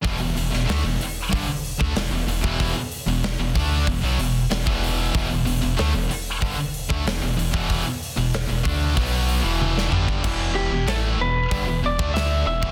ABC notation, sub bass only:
X:1
M:4/4
L:1/16
Q:1/4=94
K:Em
V:1 name="Sub bass" clef=bass
E,,, E,,, E,,, E,,, D,, E,,, E,,,2 G,,, E,,,2 D,, E,,, E,,, E,,, E,,,- | E,,, z2 E,,,2 E,,, D,,2 E,,, B,,, E,,,2 E,,, E,,,3 | E,,, E,,, E,,, E,,, D,, E,,, E,,,2 G,,, E,,,2 D,, E,,, E,,, E,,, E,,,- | E,,, z2 E,,,2 E,,, D,,2 B,,,3 E,,,3 G,,,2 |
E,,,3 E,,, A,,,2 E,,,2 G,,, E,,, E,,, D,,3 E,,, E,,, |]